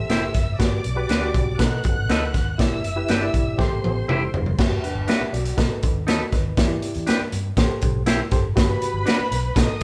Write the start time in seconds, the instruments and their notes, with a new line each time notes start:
Already playing: reed electric piano G4 A4 C5, violin section E5 E6
0.10 fingered electric bass F1, clean electric guitar E4 G4 C5, snare, closed hi-hat
0.34 fingered electric bass F#1, kick, snare, closed hi-hat
0.59 fingered electric bass G1, reed electric piano F#4 G4 B4, violin section D5 D6, kick, snare, closed hi-hat
0.84 fingered electric bass B1, closed hi-hat
0.96 reed electric piano F#4 G4 B4
1.09 fingered electric bass D2, clean electric guitar D4 F#4 B4, snare, closed hi-hat
1.21 reed electric piano F#4 G4 D5
1.34 fingered electric bass B1, kick, closed hi-hat
1.58 fingered electric bass B2, reed electric piano D4 A4 B4, violin section F#5 F#6, kick, snare, closed hi-hat
1.65 reed electric piano D#4
1.84 fingered electric bass F#1, kick, closed hi-hat
2.09 fingered electric bass D2, clean electric guitar D#4 A4 B4, snare, closed hi-hat
2.34 fingered electric bass D#2, kick, snare, closed hi-hat
2.58 fingered electric bass E1, reed electric piano E4 G4 D5, violin section E5 E6, kick, snare, closed hi-hat
2.84 fingered electric bass F#1, closed hi-hat
2.96 reed electric piano E4 G4 B4
3.08 fingered electric bass G1, clean electric guitar D4 G4 B4, snare, closed hi-hat
3.22 reed electric piano E4 G4 D5
3.34 fingered electric bass E1, kick, closed hi-hat
3.58 fingered electric bass A1, reed electric piano G4 A4 C5, violin section C5 C6, kick, snare
3.84 fingered electric bass A1, high tom
4.08 fingered electric bass F1, clean electric guitar E4 G4 C5, mid tom
4.34 fingered electric bass F#1, floor tom
4.46 floor tom
4.59 fingered electric bass G1, reed electric piano F#4 G4 B4, kick, snare, crash
4.84 reed electric piano D4 B4, closed hi-hat
4.95 fingered electric bass G1
5.08 clean electric guitar D4 F#4 B4, reed electric piano G4 E5, snare, closed hi-hat
5.20 muted fingered electric bass stroke
5.33 fingered electric bass B1, reed electric piano F#4 D5, closed hi-hat
5.45 closed hi-hat
5.57 fingered electric bass B1, reed electric piano D#4 A4 B4, kick, snare, closed hi-hat
5.70 muted fingered electric bass stroke
5.83 fingered electric bass D#2, kick, closed hi-hat
6.07 clean electric guitar D#4 A4 B4, reed electric piano F#4 D#5, snare, closed hi-hat
6.32 fingered electric bass D#2, reed electric piano D#4 B4, kick, snare, closed hi-hat
6.57 fingered electric bass E2, reed electric piano E4 G4 D5, kick, snare, closed hi-hat
6.82 closed hi-hat
6.94 fingered electric bass E2, closed hi-hat
7.07 clean electric guitar D4 G4 B4, snare, closed hi-hat
7.21 muted fingered electric bass stroke
7.32 fingered electric bass G2, closed hi-hat
7.57 fingered electric bass A1, reed electric piano G4 A4 C5, kick, snare, closed hi-hat
7.81 fingered electric bass B1, kick, closed hi-hat
8.06 clean electric guitar E4 G4 C5, snare, closed hi-hat
8.31 fingered electric bass F#1, reed electric piano G4 A4 C5, kick, snare, closed hi-hat
8.56 fingered electric bass G1, reed electric piano F#4 G4 B4, violin section B4 B5, kick, snare, closed hi-hat
8.82 closed hi-hat
8.94 fingered electric bass G1
9.06 clean electric guitar D4 F#4 B4, snare, closed hi-hat
9.19 muted fingered electric bass stroke
9.31 fingered electric bass B1, closed hi-hat
9.56 fingered electric bass B1, reed electric piano D4 A4 B4, violin section D#5 D#6, kick, snare, closed hi-hat
9.62 reed electric piano D#4